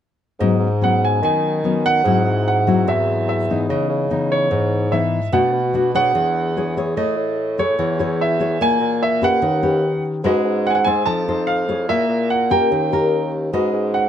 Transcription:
0.39 bassoon G#2, nylon-string guitar G#2 F#3 B3 C#4, grand piano D#5
0.59 bassoon G#2
0.81 nylon-string guitar F#3 B3 C#4, grand piano F#5
1.05 grand piano G#5
1.22 bassoon D#3, nylon-string guitar D#3, grand piano G#5
1.64 nylon-string guitar F#3 B3 C#4
1.86 grand piano F#5
2.04 bassoon G#2, nylon-string guitar G#2 F#3 C4 E4
2.24 bassoon G#2
2.48 grand piano F#5
2.67 nylon-string guitar F#3 C4 E4
2.87 bassoon E2, nylon-string guitar G#2, grand piano E5
3.29 grand piano E5
3.50 nylon-string guitar E3 B3 D#4
3.69 bassoon C#3, nylon-string guitar C#3, grand piano D#5
3.89 bassoon C#3
4.10 nylon-string guitar E3 B3 D#4
4.32 grand piano C#5
4.50 bassoon G#2, nylon-string guitar G#2
4.92 nylon-string guitar E3 B3 D#4, grand piano E5
5.32 bassoon B2, nylon-string guitar B2 A3 D4 F#4, grand piano F#5
5.53 bassoon B2
5.73 nylon-string guitar A3 D4 F#4
5.95 nylon-string guitar D4 G#4 C#5, grand piano F#5
6.14 bassoon E2, nylon-string guitar E3
6.57 nylon-string guitar D4 G#4 C#5
6.77 nylon-string guitar E4 G#4 C#5
6.96 bassoon A2, nylon-string guitar A3, grand piano D#5
7.16 bassoon A2
7.58 nylon-string guitar E4 G#4 C#5, grand piano C#5
7.79 bassoon E2, nylon-string guitar E3
7.99 nylon-string guitar E4 G#4 C#5
8.21 grand piano E5
8.40 nylon-string guitar E4 G#4 C#5
8.60 bassoon A#2, nylon-string guitar A#3, grand piano G#5
8.80 bassoon A#2
9.03 grand piano E5
9.22 nylon-string guitar C#4 G4 B4, grand piano F#5
9.42 bassoon D#2, nylon-string guitar D#3
9.63 nylon-string guitar C#4 G4 B4
10.24 bassoon G#2, nylon-string guitar G#3 C#4 F#4 B4, grand piano D#5
10.44 bassoon G#2
10.67 grand piano F#5 G#5
10.75 grand piano F#5
10.85 nylon-string guitar D#4 A4 C5, grand piano G#5
11.06 bassoon F2, nylon-string guitar F3, grand piano A5
11.28 nylon-string guitar D#4 A4 C5
11.47 grand piano F5
11.68 nylon-string guitar E4 G#4 C#5
11.88 bassoon A#2, nylon-string guitar A#3, grand piano E5
12.08 bassoon A#2
12.30 grand piano F#5
12.50 nylon-string guitar C#4 G4 A#4, grand piano G5
12.70 bassoon D#2, nylon-string guitar D#3
12.92 nylon-string guitar C#4 G4 A#4
13.53 bassoon G#2, nylon-string guitar G#3 C#4 F#4 B4, grand piano D#5
13.73 bassoon G#2
13.94 grand piano F#5

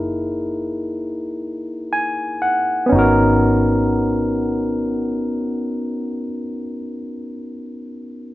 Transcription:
Already playing: fingered electric bass F#1, tine electric piano A#3 D#4 E4 G#4 A#4
1.93 tine electric piano G#5
2.42 tine electric piano F#5
2.86 tine electric piano B3 C#4
2.92 fingered electric bass G#1, tine electric piano D#4 F#4
2.99 tine electric piano A#4

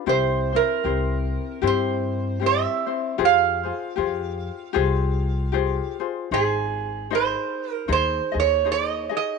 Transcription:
0.06 upright bass C2, ukulele C4 E4 G4 C5, resonator guitar played with a steel bar C5
0.53 ukulele C4 E4 C5, resonator guitar played with a steel bar A#4
0.84 upright bass C2, ukulele C4 E4 G4 C5
1.62 upright bass G2, ukulele C4 E4 G4 C5
1.67 resonator guitar played with a steel bar C5
2.40 ukulele C4 E4 G4 C5
2.46 resonator guitar played with a steel bar E5
2.86 ukulele C4 E4 C5
3.18 upright bass F2, ukulele F4 G4 G#4 C5
3.25 resonator guitar played with a steel bar F5
3.63 ukulele F4 G#4 C5
3.96 upright bass F2, ukulele F4 G4 G#4 C5
4.73 upright bass C2, ukulele F4 G4 G#4 C5
5.52 ukulele F4 G4 G#4 C5
6.00 ukulele F4 G#4 C5
6.31 upright bass G#1, ukulele D#4 G#4 C5 D#5, resonator guitar played with a steel bar G#4
7.10 ukulele D#4 G#4 C5 D#5
7.15 resonator guitar played with a steel bar C5
7.72 resonator guitar played with a steel bar A#4
7.88 upright bass D#2, ukulele D#4 G#4 C5 D#5
7.92 resonator guitar played with a steel bar C5
8.32 upright bass D#2, ukulele D#4 G#4 D#5
8.40 resonator guitar played with a steel bar C#5
8.64 ukulele D#4 G#4 C5 D#5
8.72 resonator guitar played with a steel bar D5
8.89 resonator guitar played with a steel bar D#5
9.09 ukulele D#4 G#4 D#5
9.17 resonator guitar played with a steel bar D#5

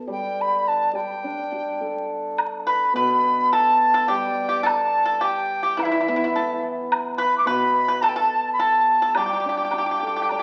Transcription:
0.07 hammered dulcimer G3
0.12 dizi G5
0.41 dizi B5
0.68 dizi A5
0.88 dizi A5
0.93 hammered dulcimer G3, dizi G5
1.24 hammered dulcimer D4
1.52 hammered dulcimer G4
1.81 hammered dulcimer A4
2.38 high woodblock
2.67 pipa B4, dizi B5
2.94 hammered dulcimer B2, pipa B4, dizi B5
3.52 pipa A4, dizi A5, high woodblock
3.94 pipa A4
4.08 hammered dulcimer G3, pipa G4, dizi G5
4.49 pipa G4
4.63 pipa A4, high woodblock
4.68 dizi A5
5.05 pipa A4
5.21 pipa G4
5.25 dizi G5
5.63 pipa G4
5.77 hammered dulcimer E3, pipa E4, high woodblock
5.83 pipa E4, dizi E5
5.92 pipa E4
6.01 pipa E4
6.08 hammered dulcimer B3, pipa E4
6.16 pipa E4
6.24 pipa E4
6.36 hammered dulcimer E4, pipa A4
6.92 high woodblock
7.17 pipa B4, dizi B5
7.38 dizi D6
7.46 hammered dulcimer B2, pipa B4, dizi B5
7.88 pipa B4
8.02 pipa A4, dizi A5, high woodblock
8.09 dizi G5
8.16 pipa A4, dizi A5
8.53 dizi B5
8.59 pipa A4, dizi A5
9.02 pipa A4
9.08 dizi A5
9.15 hammered dulcimer G3, pipa G4, dizi G5, high woodblock
9.26 pipa G4
9.33 pipa G4
9.40 pipa G4
9.46 hammered dulcimer D4, pipa G4
9.57 pipa G4
9.65 pipa G4
9.71 pipa G4, hammered dulcimer G4, high woodblock
9.78 pipa G4
9.86 pipa G4
9.91 pipa G4
10.00 pipa G4, hammered dulcimer A4
10.07 pipa G4
10.16 pipa G4
10.22 pipa G4
10.29 pipa G4, hammered dulcimer D5, high woodblock
10.39 pipa G4

